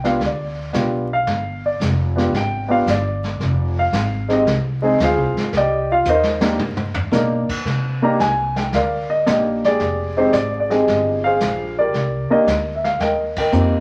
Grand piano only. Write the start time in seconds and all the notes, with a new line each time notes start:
0.04 B3 D4 F4 G4 F5
0.26 D5
0.73 B3 D4 F4 G4
1.13 F5
1.66 D5
2.16 B3 D4 F4 G4
2.37 G5
2.68 B3 D4 F4 G4 F5
2.89 D5
3.79 F5
4.28 G#3 C4 D#4 G4
4.33 D#5
4.82 G#3 C4 D#4 G#4
5.03 F4 G#4 C5 F5
5.57 G4 D5 D#5 G5
5.92 F4 F5
6.09 D#4 A#4 C5 D#5
6.41 A#3 D4 D#4 G4
7.12 A#3 D4 D#4 A#4
8.02 A#3 D4 D#4 G4 A#5
8.20 G#5
8.57 G5
8.74 A#4 D5 F5
9.10 D#5
9.26 A#3 D4 D#4 G4 D#5
9.65 G4 G#4 D5
10.17 G#3 C4 D#4 G4 C5
10.33 D5
10.60 D5
10.70 G#3 C4 D#4 G4 G#4 D#5 G5
11.24 G#4 C5 F5
11.79 G4 A#4 D5
12.30 A#3 D4 D#4 G4 A#4 D#5
12.75 E5
12.84 F5
13.01 A#4 D#5 G5
13.38 A#4 D#5 G5
13.52 A#3 C4 D#4 G4